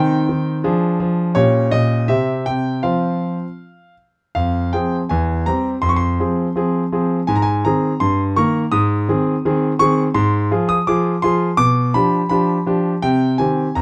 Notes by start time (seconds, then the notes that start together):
Already playing: D#3 C4 D#4 G5
0.29 D#3
0.64 F3 D4 G#4
1.00 F3
1.35 A#2 C#4 G4 C#5
1.71 A#2 D#5
2.08 C3 C4 G4 E5
2.46 C3 G5
2.83 F3 C4 F4 F5
4.35 F2 F5
4.73 F3 C4 G#4 G5
5.09 E2 G#5
5.46 G3 C4 G4 A#5
5.82 F2 C6
5.89 C#6
5.96 C6
6.20 F3 C4 G#4
6.56 F3 C4 G#4
6.92 F3 C4 G#4
7.27 G#2 G#5
7.36 A#5
7.42 G#5
7.65 D#3 C4 G#4 A#5
8.00 G2 C6
8.36 D#3 A#3 A#4 C#6
8.72 G#2 D#6
9.09 D#3 C4 G#4
9.45 D#3 C4 G#4
9.79 D#3 C4 G#4 C#6
10.14 G#2 C6
10.51 F3 F4 G#4
10.69 D#6
10.87 F3 F4 G#4 D6
11.22 F3 F4 G#4 C6
11.57 B2 D6
11.94 F3 D4 G4 B5
12.29 F3 D4 G4 B5
12.66 F3 D4 G4
13.02 C3 G5
13.38 D#3 C4 G4 G#5
13.75 F2 A#5